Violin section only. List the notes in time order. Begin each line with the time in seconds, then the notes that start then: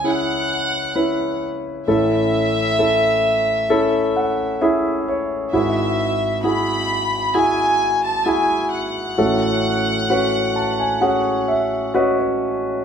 0.05 F#5
1.88 E5
5.52 E5
6.43 B5
7.33 G#5
8.03 A5
8.25 G#5
8.72 F#5